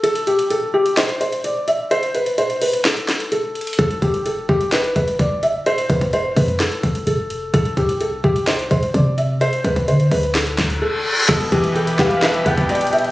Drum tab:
CC |--------------------------------|--------------------------------|--------------------------------|--------------------------------|
HH |x-x-x-x-x-----x-x-x-x-x-x---x---|x-x-x-x-x-x-o-x-x-x-x-x-x---xxxx|x-x-x-x-x-----x-x-x-x-x-x---x---|x-x-x-x-x---o-x-x-x-x-x-x---x---|
CP |----------------x---------------|----------------x---x-----------|----------------x---------------|----------------x---------------|
SD |----------------o---------------|----------------o---o-----------|----------------o---------------|----------------o---------------|
BD |--------------------------------|--------------------------------|o---o-------o-------o---o-------|----o-o-----o-------o-----------|

CC |--------------------------------|--------------------------------|x-------------------------------|
HH |x-x-x-x-x-----x-x-x-x-x-x---x---|x-x-x-x-x-x-o-x-x-x-x-x---------|x-x-x-x-x-x---x-x-x-x-x-xxxxxxx-|
CP |----------------x---------------|----------------x---x-----------|------------x---x---------------|
SD |----------------o---------------|----------------o---o-----------|------------o---o---------------|
BD |o---o-------o-------o---o-------|----o-o-----o-------o-----------|o---o-------o-------o-o---------|